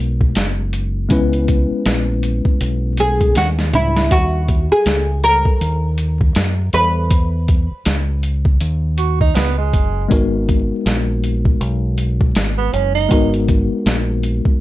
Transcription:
0.00 0.32 B1 loud
0.00 1.06 G#3 medium
0.00 1.06 B3 medium
0.00 1.07 D#4 medium
0.00 1.07 F#4 medium
0.00 1.08 A#4 medium
0.21 kick medium
0.35 1.07 F#1 medium
0.35 snare loud
0.35 closed hi-hat medium
0.73 closed hi-hat medium
1.09 1.68 C#2 medium
1.09 4.06 G#3 medium
1.09 4.06 B3 medium
1.09 4.07 C#4 medium
1.09 4.07 E4 medium
1.09 4.08 B4 medium
1.09 kick loud
1.09 closed hi-hat medium
1.33 closed hi-hat soft
1.48 kick medium
1.48 closed hi-hat medium
1.71 muted fingered electric bass stroke soft
1.86 2.43 A#1 medium
1.86 snare loud
1.86 closed hi-hat medium
2.23 closed hi-hat medium
2.45 kick medium
2.61 3.32 B1 loud
2.61 closed hi-hat medium
2.97 3.37 G#4 medium
2.97 closed hi-hat medium
3.21 kick medium
3.21 closed hi-hat soft
3.35 3.71 D#2 medium
3.35 3.47 F#4 medium
3.35 snare medium
3.35 closed hi-hat medium
3.59 snare medium
3.73 4.09 C#2 medium
3.73 4.11 E4 medium
3.73 closed hi-hat medium
3.73 mid tom medium
3.96 snare medium
4.11 4.68 D#2 loud
4.11 4.67 F#4 medium
4.11 kick loud
4.11 closed hi-hat loud
4.48 kick medium
4.48 closed hi-hat medium
4.71 5.20 G#4 medium
4.71 muted fingered electric bass stroke soft
4.86 5.43 C#2 medium
4.86 snare loud
4.86 closed hi-hat medium
5.24 6.74 A#4 loud
5.24 closed hi-hat medium
5.45 kick medium
5.61 6.32 D#2 loud
5.61 closed hi-hat medium
5.98 closed hi-hat medium
6.21 kick medium
6.35 6.71 F#2 medium
6.35 snare loud
6.35 closed hi-hat loud
6.73 7.67 E2 medium
6.73 8.20 B4 loud
6.73 closed hi-hat medium
7.11 kick loud
7.11 closed hi-hat loud
7.48 kick loud
7.48 closed hi-hat medium
7.71 muted fingered electric bass stroke soft
7.85 8.57 C#2 medium
7.85 snare loud
7.85 closed hi-hat loud
8.23 closed hi-hat medium
8.45 kick medium
8.61 9.32 D#2 medium
8.61 closed hi-hat medium
8.98 9.19 F#4 medium
8.98 closed hi-hat medium
9.21 9.37 D#4 medium
9.21 kick medium
9.35 9.71 C#2 medium
9.35 9.57 B3 medium
9.35 snare loud
9.35 closed hi-hat medium
9.58 10.08 G#3 medium
9.73 10.09 F#1 medium
9.73 kick medium
9.73 closed hi-hat medium
10.08 10.68 G#1 loud
10.08 13.06 G#3 medium
10.08 13.06 B3 medium
10.08 13.07 D#4 medium
10.08 13.07 F#4 medium
10.08 kick loud
10.08 closed hi-hat medium
10.12 13.08 A#4 medium
10.49 kick medium
10.49 closed hi-hat medium
10.71 muted fingered electric bass stroke soft
10.86 11.57 A#1 medium
10.86 snare loud
10.86 closed hi-hat loud
11.24 closed hi-hat medium
11.45 kick medium
11.61 12.32 B1 loud
11.61 closed hi-hat medium
11.98 closed hi-hat medium
12.21 kick medium
12.35 12.71 G#1 medium
12.35 snare loud
12.35 closed hi-hat medium
12.58 12.74 B3 medium
12.72 13.09 F#1 medium
12.72 12.94 C#4 medium
12.72 closed hi-hat medium
12.95 13.31 D#4 medium
13.09 13.68 G#1 loud
13.09 14.61 G#3 medium
13.09 14.61 B3 medium
13.09 14.61 D#4 medium
13.09 14.61 F#4 medium
13.09 14.61 A#4 medium
13.09 kick loud
13.09 closed hi-hat medium
13.34 closed hi-hat soft
13.48 kick medium
13.48 closed hi-hat medium
13.71 muted fingered electric bass stroke soft
13.86 14.43 A#1 medium
13.86 snare loud
13.86 closed hi-hat medium
14.23 closed hi-hat medium
14.45 kick medium

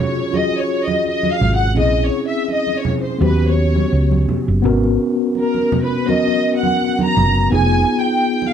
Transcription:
0.00 0.31 C#4 medium
0.00 0.32 F4 medium
0.00 0.33 F#4 medium
0.00 0.34 G#4 medium
0.00 0.34 C#5 medium
0.31 1.42 C#4 medium
0.31 1.43 F4 medium
0.31 1.43 F#4 soft
0.31 1.44 G#4 medium
0.31 muted conga soft
0.31 high conga medium
0.35 0.58 D#5 loud
0.52 muted conga soft
0.59 0.82 C#5 medium
0.85 1.06 D#5 medium
0.85 high conga medium
1.05 1.29 D#5 medium
1.05 muted conga soft
1.23 muted conga soft
1.23 high conga medium
1.32 1.54 F5 loud
1.41 1.77 G#1 medium
1.41 high conga medium
1.41 low conga medium
1.56 1.77 F#5 loud
1.75 2.08 A#1 medium
1.75 2.86 C4 medium
1.75 2.86 C#4 medium
1.75 2.87 E4 medium
1.75 2.87 G#4 medium
1.75 muted conga soft
1.75 low conga medium
1.80 2.02 D#5 loud
2.05 2.26 C#5 medium
2.28 2.49 E5 medium
2.48 muted conga soft
2.53 2.75 D#5 medium
2.67 muted conga soft
2.78 2.99 C#5 medium
2.85 high conga medium
2.85 low conga medium
3.01 3.21 C5 medium
3.18 3.84 D#2 loud
3.18 4.29 B3 medium
3.18 4.30 C#4 medium
3.18 4.31 F#4 medium
3.18 4.31 G4 medium
3.18 muted conga soft
3.18 high conga medium
3.26 3.47 B4 medium
3.48 4.18 C#5 medium
3.76 high conga medium
3.92 4.24 C#2 medium
4.11 muted conga soft
4.11 high conga medium
4.29 high conga medium
4.29 low conga medium
4.48 4.65 F#1 medium
4.62 4.96 G#1 medium
4.62 5.73 B3 medium
4.62 5.74 C#4 medium
4.62 5.75 F#4 medium
4.62 5.75 A#4 medium
4.62 muted conga soft
4.62 low conga medium
4.84 muted conga soft
5.35 muted conga soft
5.39 5.82 A#4 medium
5.54 muted conga soft
5.72 high conga medium
5.72 low conga medium
5.86 6.09 B4 medium
6.06 7.17 B3 medium
6.06 7.18 C#4 medium
6.06 7.19 F#4 medium
6.06 7.19 A#4 medium
6.06 6.56 D#5 loud
6.06 muted conga soft
6.06 high conga medium
6.28 muted conga soft
6.57 7.01 F#5 medium
6.63 high conga medium
6.80 muted conga soft
6.99 muted conga soft
6.99 high conga medium
7.04 7.52 A#5 loud
7.17 7.48 F#1 medium
7.17 high conga medium
7.17 low conga medium
7.50 7.83 F1 medium
7.50 8.53 B3 medium
7.50 8.53 D#4 medium
7.50 8.53 F4 medium
7.50 8.53 G#4 medium
7.50 7.97 G#5 loud
7.50 muted conga soft
7.50 low conga medium
8.00 8.48 G5 medium
8.42 muted conga soft
8.48 8.53 F5 medium

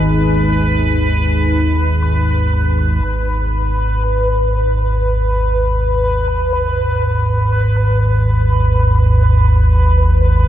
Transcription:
0.00 3.01 G#1 medium
0.00 3.01 D#2 medium
0.00 3.03 G#3 medium
0.00 3.04 D#4 medium
0.00 3.04 G#4 medium
0.00 3.02 B4 medium
0.00 3.04 B4 medium
3.02 10.48 G#1 medium
3.02 10.48 D#2 medium
3.02 10.48 B4 medium

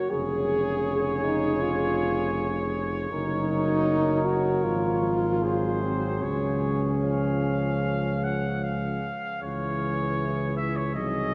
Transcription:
0.00 0.13 F#4 medium
0.11 3.08 F1 medium
0.11 2.81 C#3 medium
0.11 1.23 G#4 medium
0.11 3.08 G#4 medium
0.11 5.10 C#5 medium
1.24 1.63 D#4 medium
1.61 2.74 F4 medium
3.11 4.66 F#1 medium
3.11 4.66 F#3 medium
3.11 4.27 D#4 loud
3.11 5.44 A#4 medium
4.25 4.65 F#4 medium
4.64 6.23 G#1 medium
4.64 5.41 F3 soft
4.64 5.84 F4 medium
5.42 7.05 F#3 medium
5.42 9.10 G#4 soft
5.42 6.24 C5 soft
5.82 6.22 C4 medium
6.22 9.10 C#2 medium
6.22 8.99 C#4 medium
6.22 6.96 C#5 soft
7.04 9.10 F3 medium
7.04 8.25 F5 medium
8.24 8.65 F#5 soft
8.64 9.42 F5 soft
9.42 10.98 C#2 soft
9.42 10.98 E3 medium
9.42 10.97 E4 soft
9.42 10.92 G#4 soft
9.42 10.54 C#5 medium
10.57 10.78 E5 medium
10.76 10.95 C#5 soft
10.95 11.34 C2 soft
10.95 11.34 F#3 soft
10.95 11.34 D#4 medium
10.95 11.34 G#4 soft
10.95 11.34 D#5 medium

